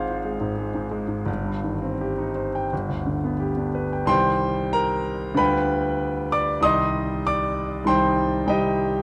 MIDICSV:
0, 0, Header, 1, 2, 480
1, 0, Start_track
1, 0, Key_signature, -3, "minor"
1, 0, Tempo, 644468
1, 433, Tempo, 710059
1, 904, Time_signature, 4, 2, 24, 8
1, 1873, Tempo, 677201
1, 3313, Tempo, 630252
1, 4753, Tempo, 611621
1, 6626, End_track
2, 0, Start_track
2, 0, Title_t, "Grand piano"
2, 0, Program_c, 0, 0
2, 0, Control_c, 0, 64, 127
2, 0, Note_on_c, 0, 32, 75
2, 0, Note_on_c, 0, 44, 58
2, 0, Note_on_c, 0, 56, 56
2, 0, Note_on_c, 0, 60, 62
2, 0, Note_on_c, 0, 65, 58
2, 0, Note_on_c, 0, 68, 53
2, 0, Note_on_c, 0, 72, 58
2, 0, Note_on_c, 0, 77, 63
2, 75, Note_off_c, 0, 65, 0
2, 75, Note_on_c, 0, 65, 48
2, 143, Note_off_c, 0, 72, 0
2, 182, Note_off_c, 0, 56, 0
2, 182, Note_on_c, 0, 56, 46
2, 263, Note_off_c, 0, 65, 0
2, 303, Note_off_c, 0, 44, 0
2, 303, Note_on_c, 0, 44, 50
2, 380, Note_off_c, 0, 56, 0
2, 434, Note_on_c, 0, 56, 45
2, 499, Note_off_c, 0, 44, 0
2, 545, Note_on_c, 0, 44, 50
2, 618, Note_off_c, 0, 56, 0
2, 657, Note_on_c, 0, 56, 50
2, 734, Note_off_c, 0, 44, 0
2, 771, Note_on_c, 0, 44, 41
2, 851, Note_off_c, 0, 56, 0
2, 872, Note_off_c, 0, 32, 0
2, 889, Note_on_c, 0, 31, 63
2, 898, Note_off_c, 0, 44, 0
2, 915, Control_c, 0, 64, 0
2, 919, Note_off_c, 0, 60, 0
2, 920, Note_off_c, 0, 68, 0
2, 920, Note_off_c, 0, 77, 0
2, 1019, Note_on_c, 0, 43, 49
2, 1053, Control_c, 0, 64, 127
2, 1148, Note_on_c, 0, 51, 46
2, 1218, Note_off_c, 0, 43, 0
2, 1270, Note_on_c, 0, 60, 48
2, 1344, Note_off_c, 0, 51, 0
2, 1400, Note_on_c, 0, 67, 49
2, 1466, Note_off_c, 0, 60, 0
2, 1514, Note_on_c, 0, 63, 48
2, 1591, Note_off_c, 0, 67, 0
2, 1631, Note_on_c, 0, 72, 46
2, 1707, Note_off_c, 0, 63, 0
2, 1766, Note_on_c, 0, 79, 54
2, 1824, Note_off_c, 0, 72, 0
2, 1839, Note_off_c, 0, 31, 0
2, 1879, Note_off_c, 0, 79, 0
2, 1887, Note_on_c, 0, 31, 62
2, 1890, Control_c, 0, 64, 0
2, 1994, Control_c, 0, 64, 127
2, 2000, Note_on_c, 0, 38, 41
2, 2122, Note_on_c, 0, 50, 44
2, 2194, Note_off_c, 0, 38, 0
2, 2248, Note_on_c, 0, 59, 49
2, 2316, Note_off_c, 0, 50, 0
2, 2359, Note_on_c, 0, 67, 50
2, 2440, Note_off_c, 0, 59, 0
2, 2484, Note_on_c, 0, 62, 43
2, 2558, Note_off_c, 0, 67, 0
2, 2607, Note_on_c, 0, 71, 51
2, 2682, Note_off_c, 0, 62, 0
2, 2736, Note_on_c, 0, 79, 51
2, 2800, Note_off_c, 0, 71, 0
2, 2826, Note_off_c, 0, 31, 0
2, 2826, Note_on_c, 0, 36, 67
2, 2831, Note_on_c, 0, 51, 50
2, 2836, Note_on_c, 0, 55, 49
2, 2837, Note_on_c, 0, 84, 96
2, 2838, Note_off_c, 0, 79, 0
2, 2845, Note_on_c, 0, 67, 50
2, 2849, Note_on_c, 0, 79, 80
2, 2855, Note_on_c, 0, 72, 72
2, 2861, Control_c, 0, 64, 0
2, 2978, Control_c, 0, 64, 127
2, 3286, Note_off_c, 0, 79, 0
2, 3289, Note_off_c, 0, 72, 0
2, 3303, Note_on_c, 0, 82, 92
2, 3308, Note_off_c, 0, 84, 0
2, 3309, Note_on_c, 0, 70, 68
2, 3762, Note_off_c, 0, 36, 0
2, 3765, Note_off_c, 0, 51, 0
2, 3768, Note_off_c, 0, 55, 0
2, 3771, Note_off_c, 0, 70, 0
2, 3772, Note_on_c, 0, 38, 63
2, 3773, Note_off_c, 0, 67, 0
2, 3773, Note_on_c, 0, 50, 51
2, 3787, Note_on_c, 0, 55, 47
2, 3792, Note_on_c, 0, 83, 90
2, 3794, Note_on_c, 0, 65, 54
2, 3795, Note_on_c, 0, 71, 77
2, 3798, Note_off_c, 0, 82, 0
2, 3802, Note_on_c, 0, 79, 71
2, 3820, Control_c, 0, 64, 0
2, 3922, Control_c, 0, 64, 127
2, 4483, Note_off_c, 0, 71, 0
2, 4486, Note_off_c, 0, 79, 0
2, 4511, Note_off_c, 0, 83, 0
2, 4516, Note_on_c, 0, 86, 93
2, 4520, Note_on_c, 0, 74, 72
2, 4709, Note_off_c, 0, 38, 0
2, 4709, Note_off_c, 0, 50, 0
2, 4717, Note_off_c, 0, 55, 0
2, 4720, Note_off_c, 0, 65, 0
2, 4729, Note_on_c, 0, 36, 60
2, 4735, Note_on_c, 0, 51, 47
2, 4739, Note_off_c, 0, 74, 0
2, 4747, Note_on_c, 0, 55, 50
2, 4747, Note_on_c, 0, 87, 100
2, 4753, Note_off_c, 0, 86, 0
2, 4755, Note_on_c, 0, 84, 72
2, 4756, Note_on_c, 0, 63, 54
2, 4764, Note_on_c, 0, 75, 80
2, 4770, Control_c, 0, 64, 0
2, 4871, Control_c, 0, 64, 127
2, 5203, Note_off_c, 0, 84, 0
2, 5207, Note_off_c, 0, 75, 0
2, 5230, Note_off_c, 0, 87, 0
2, 5249, Note_on_c, 0, 86, 93
2, 5257, Note_on_c, 0, 74, 70
2, 5673, Note_off_c, 0, 36, 0
2, 5676, Note_off_c, 0, 51, 0
2, 5683, Note_off_c, 0, 55, 0
2, 5687, Note_off_c, 0, 63, 0
2, 5695, Note_off_c, 0, 74, 0
2, 5700, Note_on_c, 0, 36, 57
2, 5709, Note_on_c, 0, 51, 47
2, 5711, Note_on_c, 0, 55, 47
2, 5722, Note_on_c, 0, 84, 94
2, 5723, Note_off_c, 0, 86, 0
2, 5726, Note_on_c, 0, 63, 50
2, 5729, Note_on_c, 0, 72, 71
2, 5730, Note_on_c, 0, 79, 77
2, 6173, Note_off_c, 0, 51, 0
2, 6173, Note_off_c, 0, 72, 0
2, 6174, Note_off_c, 0, 36, 0
2, 6174, Note_off_c, 0, 79, 0
2, 6182, Note_off_c, 0, 55, 0
2, 6184, Note_on_c, 0, 51, 48
2, 6185, Note_on_c, 0, 36, 57
2, 6189, Note_off_c, 0, 63, 0
2, 6196, Note_on_c, 0, 55, 45
2, 6199, Note_on_c, 0, 79, 79
2, 6201, Note_off_c, 0, 84, 0
2, 6202, Note_on_c, 0, 63, 48
2, 6212, Note_on_c, 0, 67, 68
2, 6213, Note_on_c, 0, 75, 68
2, 6626, Note_off_c, 0, 36, 0
2, 6626, Note_off_c, 0, 51, 0
2, 6626, Note_off_c, 0, 55, 0
2, 6626, Note_off_c, 0, 63, 0
2, 6626, Note_off_c, 0, 67, 0
2, 6626, Note_off_c, 0, 75, 0
2, 6626, Note_off_c, 0, 79, 0
2, 6626, End_track
0, 0, End_of_file